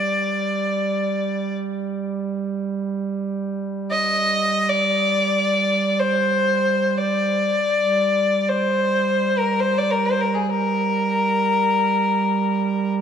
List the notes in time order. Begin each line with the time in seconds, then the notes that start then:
Already playing: G3 D5
3.91 D#5
4.69 D5
6.00 C5
6.98 D5
7.78 G3
8.49 C5
9.38 A#4
9.60 C5
9.78 D5
9.91 A#4
10.05 C5
10.21 A#4
10.34 G#4
10.50 A#4